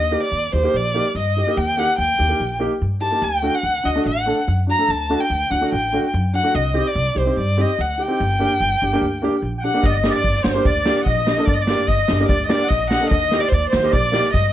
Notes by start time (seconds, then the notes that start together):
Already playing: D#2 D#5
0.11 A#3 D#4 G4
0.23 D5
0.31 D#2
0.53 D#2 D#4 G4 C5
0.63 A#3 D#4 G4
0.74 A#1 D5
0.94 A#3 D#4 G4
1.15 G2 D#5
1.36 D#4 G4
1.47 A#3 D#4 G4
1.57 D#2 G5
1.77 A#3 D#4 G4 F#5
1.98 D#2 G5
2.18 D#2 D#4 G4
2.29 A#3 D#4 G4
2.40 A#1
2.59 A#3 D#4 G4
2.81 G2
3.00 D#4 G4 A5
3.11 A#3 D#4 G4
3.22 D2 G5
3.42 A3 D4 F#4
3.55 F#5
3.63 D2
3.83 D2 D4 F#4 D#5
3.96 A3 D4 F#4
4.06 A1 F#5
4.26 A3 D4 A4
4.48 F#2
4.67 D4 F#4
4.71 A#5
4.78 A3 D4 A4
4.88 D2 A5
5.10 A3 D4 F#4
5.20 G5
5.30 D2
5.50 D2 D4 F#4 F#5
5.61 A3 D4 F#4
5.72 A1 G5
5.93 A3 D4 F#4
6.14 F#2
6.33 D4 F#4 F#5
6.43 A3 D4 F#4
6.55 C2 D#5
6.74 C4 D#4 G4
6.87 D5
6.95 C2
7.14 C2 D#4 G4 C5
7.25 C4 D#4 G4
7.37 G2 D5
7.57 C4 D#4 G4 D#5
7.79 D2 F#5
7.97 D#4 G4
8.02 G5
8.08 C4 D#4 G4
8.20 G1
8.39 A#3 D4 G4
8.60 G1
8.81 G1 D4 G4
8.93 A#3 D4 G4
9.01 D2
9.22 A#3 D4 G4
9.42 A#1
9.58 F#5 G5
9.64 D4 G4 F#5
9.74 A#3 D4 G4
9.82 G1 D#5, kick
9.88 D5
9.93 D#5
10.04 A#3 D4 G4, snare
10.10 D5
10.15 D5
10.24 G1, kick
10.34 snare
10.42 G1 D4 F#4 C5, snare
10.54 A#3 D4 G4
10.65 D2 D5, kick
10.85 A#3 D4 G4, snare
10.96 snare
11.00 F#5
11.06 A#1 D#5, kick
11.26 D4 G4, snare
11.37 A#3 D4 A4
11.45 G1 D5, kick
11.54 D#5
11.59 D5
11.67 A#3 D4 G4, snare
11.78 snare
11.87 G1 D#5, kick
12.08 G1 D4 G4, snare
12.19 A#3 D4 G4
12.28 D2 D5, kick
12.45 A#3 D5 D#5
12.49 D4 G4 D5, snare
12.63 F#5
12.68 A#1 D#5, kick
12.90 D4 G4 F#5, snare
13.00 A#3 D4 A4
13.10 D#2 D#5, kick
13.31 A#3 D#4 G4, snare
13.38 D5 D#5
13.49 D#2 C5, kick
13.54 D5
13.70 D#4 C5, snare
13.74 D#2 F#4
13.83 A#3 D#4 G4 D#5
13.91 A#1 D5, kick
14.12 A#3 D#4 G4, snare
14.24 snare
14.30 D#5, snare
14.34 G2, kick